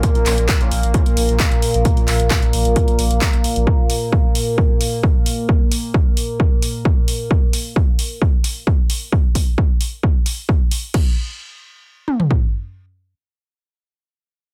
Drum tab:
CC |----------------|----------------|----------------|----------------|
HH |xxoxxxoxxxoxxxox|xxoxxxoxxxoxxxox|--o---o---o---o-|--o---o---o---o-|
CP |--x-x-------x---|--x-x-------x---|----------------|----------------|
T2 |----------------|----------------|----------------|----------------|
FT |----------------|----------------|----------------|----------------|
BD |o---o---o---o---|o---o---o---o---|o---o---o---o---|o---o---o---o---|

CC |----------------|----------------|x---------------|----------------|
HH |--o---o---o---o-|--o---o---o---o-|----------------|----------------|
CP |----------------|----------------|----------------|----------------|
T2 |----------------|----------------|----------o-----|----------------|
FT |----------------|----------------|-----------o----|----------------|
BD |o---o---o---o---|o-o-o---o---o---|o-----------o---|----------------|